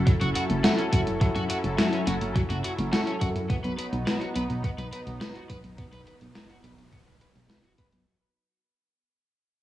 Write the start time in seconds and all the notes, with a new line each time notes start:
Already playing: F#3 C#4 E4 F#4 A4
0.07 F#3, kick, closed hi-hat
0.21 F#1 F#4, closed hi-hat
0.35 F#4, closed hi-hat
0.50 F#1, closed hi-hat
0.64 E4 F#4 A4, snare, closed hi-hat
0.78 C#4, closed hi-hat
0.93 F#1 F#4, kick, closed hi-hat
1.07 F#1, closed hi-hat
1.21 F#3 E4 F#4 A4, kick, closed hi-hat
1.36 F#1 F#4, closed hi-hat
1.50 F#4, closed hi-hat
1.64 F#1, closed hi-hat
1.78 F#4, snare, closed hi-hat
1.93 C#4, closed hi-hat
2.07 F#1 F#4, closed hi-hat
2.21 F#1, closed hi-hat
2.35 F#3, kick, closed hi-hat
2.50 F#1 F#4, closed hi-hat
2.64 F#4, closed hi-hat
2.78 F#1, closed hi-hat
2.93 E4 F#4 A4, snare, closed hi-hat
3.07 C#4, closed hi-hat
3.21 F#2 F#4, kick, closed hi-hat
3.36 F#2, closed hi-hat
3.50 B3 D#4, kick, closed hi-hat
3.64 B1 B4, closed hi-hat
3.78 B4, closed hi-hat
3.93 B1, closed hi-hat
4.07 B4, snare, closed hi-hat
4.21 F#4, closed hi-hat
4.36 B1 B4, closed hi-hat
4.50 B1, closed hi-hat
4.64 B3, kick, closed hi-hat
4.78 B1 B4, closed hi-hat
4.93 B4, closed hi-hat
5.07 B1, closed hi-hat
5.21 B4, snare, closed hi-hat
5.35 F#4, closed hi-hat
5.50 B1 B4, kick, closed hi-hat
5.64 B1, closed hi-hat
5.78 B3, kick, closed hi-hat
5.93 B1 B4, closed hi-hat
6.07 B4, closed hi-hat
6.21 B1, closed hi-hat
6.35 B4, snare, closed hi-hat
6.50 F#4, closed hi-hat
6.64 B1 B4, closed hi-hat
6.78 B1, closed hi-hat
6.93 B3, kick, closed hi-hat
7.07 B1 B4, closed hi-hat
7.21 B4, closed hi-hat
7.35 B1, closed hi-hat
7.50 B4, snare, closed hi-hat
7.64 F#4, closed hi-hat
7.78 F#1 B4, kick, closed hi-hat
7.93 B1, closed hi-hat